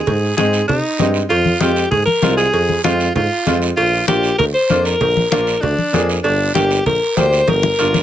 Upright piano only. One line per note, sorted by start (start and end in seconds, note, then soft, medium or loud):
0.37 0.59 G#3 medium
0.37 0.59 C4 medium
0.37 0.60 D#4 medium
0.99 1.21 G#3 medium
0.99 1.21 C4 medium
0.99 1.21 D#4 medium
1.61 1.83 G#3 medium
1.61 1.83 C4 medium
1.61 1.83 F4 medium
2.22 2.44 G#3 medium
2.22 2.44 C4 medium
2.22 2.45 F4 medium
2.84 3.06 G#3 medium
2.84 3.06 C4 medium
2.84 3.06 F4 medium
3.46 3.68 G#3 medium
3.46 3.68 C4 medium
3.46 3.68 F4 medium
4.08 4.30 A#3 medium
4.08 4.30 D4 medium
4.08 4.30 F4 medium
4.69 4.91 A#3 medium
4.69 4.91 D4 medium
4.69 4.92 F4 medium
5.32 5.53 A#3 medium
5.32 5.53 D4 medium
5.32 5.54 F4 medium
5.93 6.15 A#3 medium
5.93 6.15 D4 medium
5.93 6.15 G#4 medium
6.55 6.77 A#3 medium
6.55 6.77 D4 medium
6.55 6.77 G4 medium
7.17 7.39 A#3 medium
7.17 7.39 D4 medium
7.17 7.39 G4 medium
7.79 8.00 A#3 medium
7.79 8.01 D4 medium
7.79 8.01 F4 medium